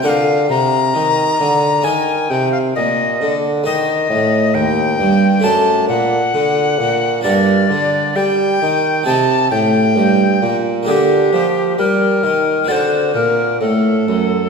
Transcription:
0.02 0.49 D3 medium
0.02 0.46 D3 soft
0.02 1.80 F4 soft
0.02 1.81 A#4 soft
0.02 0.10 F#5 medium
0.09 0.49 F5 medium
0.49 0.91 C3 medium
0.49 0.94 C3 medium
0.49 1.86 A#5 medium
0.94 1.36 D#3 medium
0.94 1.39 D#3 medium
1.40 1.81 D3 soft
1.40 1.86 D3 medium
1.82 2.29 D#3 medium
1.82 2.26 D#3 soft
1.82 3.60 D#4 soft
1.82 3.61 A#4 soft
1.82 2.32 G#5 medium
2.30 2.74 C3 medium
2.30 2.72 C3 soft
2.30 2.51 G5 medium
2.52 2.58 F5 medium
2.75 3.22 A#2 soft
2.75 3.17 A#2 soft
2.75 3.37 D#5 medium
3.21 3.66 D3 medium
3.21 3.62 D3 medium
3.64 4.09 D#3 medium
3.64 4.07 D#3 soft
3.64 5.39 D#4 soft
3.64 5.40 C5 soft
3.64 4.56 D#5 medium
4.10 4.54 A2 medium
4.10 4.52 A2 medium
4.54 5.00 D#2 medium
4.54 4.96 D#2 medium
4.54 5.45 G5 loud
4.99 5.43 G2 medium
4.99 5.41 G2 soft
5.40 5.90 F#2 medium
5.40 5.86 A3 soft
5.40 7.20 D4 soft
5.40 7.20 C5 soft
5.44 5.85 F#2 soft
5.44 5.88 A5 medium
5.89 6.20 A#2 medium
5.89 6.30 A#2 soft
5.89 7.22 F#5 medium
6.34 6.80 D3 soft
6.34 6.76 D3 soft
6.79 7.23 A#2 medium
6.79 7.21 A#2 soft
7.21 7.68 G2 medium
7.21 8.56 A#3 soft
7.21 8.57 D4 soft
7.21 9.02 A#4 soft
7.21 8.18 D5 medium
7.25 7.67 G2 soft
7.69 8.15 D3 medium
7.69 8.13 D3 soft
8.16 8.57 G3 medium
8.16 8.61 G3 medium
8.16 9.05 G5 medium
8.62 9.03 D#3 soft
8.62 9.06 D#3 medium
9.03 9.51 C3 soft
9.03 10.82 C4 soft
9.03 10.82 D#4 soft
9.03 10.83 G4 soft
9.03 9.50 A5 medium
9.07 9.48 C3 soft
9.51 9.98 A2 medium
9.51 9.93 A2 soft
9.51 10.57 G5 medium
9.96 10.38 G2 soft
9.96 10.41 G2 medium
10.41 10.86 A#2 soft
10.41 10.84 A#2 soft
10.83 12.63 A#3 soft
10.83 12.64 D4 soft
10.83 12.64 G4 soft
10.83 10.92 G#4 medium
10.88 11.29 D3 soft
10.88 11.32 D3 soft
10.88 11.74 G4 medium
11.33 11.74 F3 soft
11.33 11.77 F3 medium
11.78 12.26 G3 soft
11.78 12.20 G3 soft
11.78 12.70 A#4 medium
12.23 12.65 D#3 soft
12.23 12.68 D#3 soft
12.64 14.48 C4 soft
12.64 14.49 D4 soft
12.64 14.49 F#4 soft
12.64 12.73 D5 medium
12.68 13.10 D3 soft
12.68 13.14 D3 soft
12.68 13.14 C5 medium
13.14 13.56 A#2 soft
13.14 13.62 A#2 soft
13.14 13.60 A#4 medium
13.60 14.07 A2 soft
13.60 14.03 A2 soft
13.60 14.49 A4 medium
14.07 14.40 F#2 soft
14.07 14.49 F#2 soft

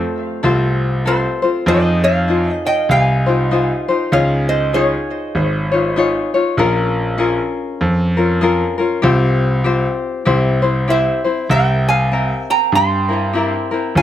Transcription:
0.00 1.00 A3 medium
0.00 0.43 C4 medium
0.00 0.43 F4 medium
0.00 0.42 A4 medium
0.00 0.44 C5 medium
0.00 1.01 C5 medium
0.00 0.99 F5 medium
0.43 1.24 C2 medium
0.43 1.06 C4 medium
0.43 1.07 F4 medium
0.43 1.04 A4 medium
0.43 1.07 C5 medium
1.06 1.43 C4 medium
1.06 1.42 F4 medium
1.06 1.42 A4 medium
1.06 1.64 A4 medium
1.06 1.67 C5 medium
1.06 1.41 C5 medium
1.42 1.67 C4 soft
1.42 1.67 F4 soft
1.42 1.67 C5 medium
1.66 2.46 F2 loud
1.66 2.28 D#4 medium
1.66 2.29 F4 medium
1.66 2.27 G#4 medium
1.66 2.02 C5 medium
1.66 2.04 D#5 medium
2.04 2.61 C#5 medium
2.04 2.52 F5 medium
2.28 3.27 D#4 medium
2.28 3.27 F4 medium
2.28 3.51 G#4 medium
2.52 2.67 D#5 medium
2.66 2.89 D#5 medium
2.66 2.91 G5 medium
2.89 3.69 C2 medium
2.89 4.09 F5 medium
2.89 4.17 G#5 loud
3.26 3.50 D#4 soft
3.26 3.51 F4 soft
3.26 3.51 C5 medium
3.51 3.88 D#4 medium
3.51 3.88 F4 medium
3.51 3.88 G#4 medium
3.51 3.87 C5 medium
3.88 4.12 D#4 soft
3.88 4.12 F4 soft
3.88 4.13 C5 medium
4.12 4.92 C#2 medium
4.12 4.73 D#4 medium
4.12 4.75 F4 medium
4.12 4.73 G#4 medium
4.12 4.47 C#5 medium
4.12 4.48 F5 medium
4.49 4.72 C5 medium
4.49 4.74 D#5 medium
4.73 5.72 D#4 medium
4.73 5.73 F4 medium
4.73 5.96 G#4 medium
4.73 5.93 G#4 medium
4.73 5.93 C#5 medium
4.73 5.71 C#5 medium
5.35 6.15 G#1 medium
5.72 5.96 D#4 medium
5.72 5.96 F4 medium
5.72 5.96 C#5 medium
5.96 6.34 D#4 medium
5.96 6.34 F4 medium
5.96 6.33 G#4 medium
5.96 6.33 C#5 medium
6.34 6.58 D#4 soft
6.34 6.58 F4 medium
6.34 6.58 C#5 medium
6.57 7.38 A#1 medium
6.57 7.17 C#4 medium
6.57 7.19 F4 medium
6.57 7.16 G#4 medium
6.57 7.18 A#4 loud
7.18 8.17 C#4 medium
7.18 8.18 F4 medium
7.18 8.17 G#4 medium
7.18 8.16 A#4 medium
7.81 8.61 F2 medium
8.17 8.40 C#4 medium
8.17 8.41 F4 medium
8.17 8.42 A#4 medium
8.41 8.79 C#4 medium
8.41 8.78 F4 medium
8.41 8.79 G#4 medium
8.41 8.77 A#4 medium
8.78 9.03 C#4 medium
8.78 9.02 F4 medium
8.78 9.03 A#4 medium
9.02 9.84 C2 loud
9.02 9.64 C4 medium
9.02 9.64 F4 medium
9.02 9.64 G4 medium
9.02 9.66 C5 medium
9.64 10.25 C4 medium
9.64 10.27 F4 medium
9.64 10.25 G4 medium
9.64 10.26 C5 medium
10.25 11.06 C2 medium
10.25 10.63 C4 medium
10.25 10.62 E4 medium
10.25 10.63 G4 medium
10.25 10.61 C5 medium
10.62 10.87 C4 soft
10.62 10.87 E4 soft
10.62 10.88 C5 medium
10.88 11.25 C4 medium
10.88 11.24 E4 medium
10.88 11.25 G4 medium
10.88 11.23 C5 medium
10.88 11.47 C5 medium
10.88 11.51 E5 medium
11.24 11.48 C4 soft
11.24 11.50 E4 soft
11.24 11.50 C5 soft
11.50 12.30 C2 medium
11.50 12.10 C4 medium
11.50 12.13 A#4 medium
11.50 11.86 E5 medium
11.50 11.88 G5 medium
11.89 12.46 F5 medium
11.89 12.50 G#5 medium
12.12 13.09 C4 medium
12.12 13.09 A#4 medium
12.50 12.72 G5 medium
12.50 12.75 A#5 loud
12.72 13.53 G2 medium
12.72 13.97 C6 loud
12.77 13.94 G5 medium
13.09 13.33 C4 soft
13.09 13.34 E4 soft
13.09 13.34 A#4 soft
13.33 13.71 C4 medium
13.33 13.71 E4 medium
13.33 13.71 G4 medium
13.33 13.70 A#4 medium
13.71 13.96 C4 soft
13.71 13.96 E4 medium
13.71 13.96 A#4 medium
13.95 14.02 G1 loud
13.95 14.02 C#4 medium
13.95 14.02 F4 medium
13.95 14.02 A#4 medium
13.95 14.02 F5 medium
13.95 14.02 G#5 medium

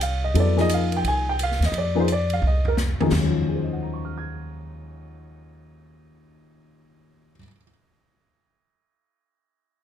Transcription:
0.00 0.31 C2 medium
0.00 0.23 F5 medium
0.00 hi-hat pedal medium
0.00 ride medium
0.24 0.36 D#5 medium
0.34 1.01 F2 medium
0.34 0.55 F#3 medium
0.34 0.55 B3 medium
0.34 0.55 E4 medium
0.34 0.56 A4 medium
0.34 ride medium
0.40 0.59 D5 medium
0.56 1.31 F3 medium
0.56 1.31 A#3 medium
0.56 1.32 D#4 medium
0.56 1.32 G#4 medium
0.56 snare soft
0.61 0.71 D#5 medium
0.69 hi-hat pedal medium
0.69 ride medium
0.74 0.94 F5 medium
0.92 ride soft
0.97 1.06 G5 medium
1.04 1.57 C2 medium
1.04 1.28 G#5 medium
1.04 ride medium
1.29 1.40 G5 medium
1.39 hi-hat pedal soft
1.39 ride medium
1.43 1.63 F5 medium
1.51 snare soft
1.60 1.71 D#2 medium
1.60 snare soft
1.60 ride soft
1.66 1.76 D#5 medium
1.72 2.38 F2 medium
1.72 ride medium
1.78 1.97 D5 medium
1.95 2.07 F3 medium
1.95 2.07 A#3 medium
1.95 2.07 D#4 medium
1.95 2.07 G#4 medium
2.00 2.10 C5 medium
2.08 hi-hat pedal soft
2.08 ride medium
2.12 2.32 D5 medium
2.30 2.44 F5 medium
2.30 ride soft
2.42 2.95 C2 medium
2.42 floor tom soft
2.47 2.66 D#5 medium
2.65 2.74 A#4 medium
2.65 floor tom medium
2.77 snare medium
2.77 hi-hat pedal medium
3.00 7.32 D#2 medium
3.00 3.11 F3 medium
3.00 3.11 A#3 medium
3.00 3.11 D#4 medium
3.00 3.12 G#4 medium
3.00 floor tom medium
3.06 7.35 D#3 medium
3.11 7.33 D#2 medium
3.11 7.37 F#3 medium
3.11 snare medium
3.11 floor tom medium
3.11 splash medium
3.16 7.39 G#3 soft
3.20 7.42 C#4 soft
3.26 7.45 F3 medium
3.48 7.35 G#4 soft
3.56 7.38 C5 soft
3.64 7.42 D#5 soft
3.73 7.47 F#5 soft
3.83 7.52 A#5 soft
3.94 7.57 C#6 soft
4.05 7.63 F6 soft
4.18 7.69 G#6 soft

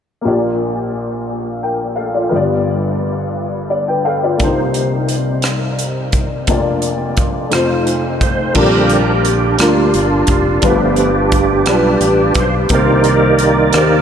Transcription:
0.21 2.29 A#1 soft
0.21 2.29 A#2 soft
0.21 2.27 A#3 soft
0.21 1.60 F4 soft
0.26 1.61 G4 soft
0.26 1.62 D5 soft
1.63 1.96 A#4 soft
1.63 1.96 G5 soft
1.96 2.14 A4 soft
1.96 2.13 F5 soft
2.14 2.29 F4 soft
2.14 2.34 D5 soft
2.29 4.36 G1 soft
2.29 4.36 G2 soft
2.29 4.35 B3 soft
2.29 3.68 F4 soft
2.29 3.69 G4 soft
2.36 3.69 D5 medium
3.70 4.03 D5 soft
3.88 4.06 B4 soft
3.88 4.04 G5 soft
4.05 4.23 A4 soft
4.05 4.22 F5 soft
4.05 4.38 G5 soft
4.24 4.57 F4 soft
4.24 4.57 D5 soft
4.37 6.44 C2 soft
4.37 6.45 C3 soft
4.37 6.43 A#3 soft
4.37 4.47 D4 soft
4.37 kick medium
4.37 closed hi-hat medium
4.42 6.47 D#4 soft
4.42 6.45 G4 soft
4.42 6.46 C5 medium
4.74 closed hi-hat soft
5.09 closed hi-hat soft
5.42 cross-stick medium
5.42 closed hi-hat medium
5.79 closed hi-hat soft
6.12 kick medium
6.12 closed hi-hat soft
6.47 7.49 F1 medium
6.47 7.49 F2 soft
6.47 7.52 A#3 medium
6.47 7.53 D4 soft
6.47 7.50 F4 medium
6.47 7.53 D5 medium
6.47 kick medium
6.47 closed hi-hat medium
6.82 closed hi-hat soft
7.17 kick medium
7.17 closed hi-hat soft
7.50 8.52 F1 medium
7.50 8.52 F2 medium
7.50 8.55 A3 medium
7.50 8.56 D#4 soft
7.50 8.54 F4 medium
7.50 8.57 C5 medium
7.50 cross-stick medium
7.50 closed hi-hat medium
7.87 closed hi-hat soft
8.21 8.54 C5 medium
8.21 kick medium
8.21 closed hi-hat soft
8.53 9.56 A#1 medium
8.53 9.56 A#2 soft
8.53 9.03 D3 soft
8.53 9.20 G3 medium
8.53 9.21 D4 medium
8.53 9.22 F4 soft
8.53 9.22 A#4 medium
8.53 kick medium
8.53 crash medium
8.58 9.03 G3 soft
8.58 9.03 C4 soft
8.58 9.57 D4 soft
8.58 9.26 G4 soft
8.58 9.29 A#4 medium
8.89 closed hi-hat soft
9.25 9.62 G4 medium
9.25 closed hi-hat soft
9.58 9.91 D2 medium
9.58 10.24 G3 medium
9.58 10.25 D4 medium
9.58 10.25 F4 soft
9.58 10.26 A#4 medium
9.58 cross-stick medium
9.58 closed hi-hat medium
9.63 10.61 D4 soft
9.63 10.69 F4 medium
9.94 10.27 G1 medium
9.94 closed hi-hat soft
10.27 10.60 F1 medium
10.27 kick medium
10.27 closed hi-hat soft
10.61 11.63 G1 medium
10.61 11.63 G2 soft
10.61 11.10 F3 soft
10.61 11.28 G3 medium
10.61 11.10 A3 soft
10.61 11.11 B3 soft
10.61 11.29 D4 medium
10.61 11.29 F4 medium
10.61 11.29 B4 medium
10.61 kick medium
10.61 closed hi-hat medium
10.66 12.34 D4 soft
10.66 12.43 G4 medium
10.96 closed hi-hat soft
11.32 kick medium
11.32 closed hi-hat soft
11.66 11.99 B1 medium
11.66 12.32 G3 medium
11.66 12.33 D4 medium
11.66 12.33 F4 medium
11.66 12.33 B4 medium
11.66 cross-stick medium
11.66 closed hi-hat medium
12.01 12.33 A1 medium
12.01 closed hi-hat soft
12.34 12.68 B1 medium
12.34 kick medium
12.34 closed hi-hat soft
12.40 12.55 C5 medium
12.69 13.70 C2 medium
12.69 13.71 C3 soft
12.69 14.02 D#3 soft
12.69 13.36 A#3 medium
12.69 14.02 A#3 soft
12.69 13.37 D#4 medium
12.69 13.37 G4 medium
12.69 kick medium
12.69 closed hi-hat medium
12.73 13.72 D#4 medium
12.73 13.41 G4 medium
12.73 13.44 A#4 medium
12.73 13.38 C5 medium
12.73 14.02 D5 soft
13.04 closed hi-hat soft
13.39 13.57 G4 medium
13.39 closed hi-hat soft
13.73 14.02 D#2 medium
13.73 14.02 A#3 medium
13.73 14.02 D#4 soft
13.73 14.02 G4 medium
13.73 14.02 G4 soft
13.73 cross-stick medium
13.73 closed hi-hat medium
13.77 14.02 D#4 medium
13.77 14.02 A#4 medium
13.77 14.02 C5 medium

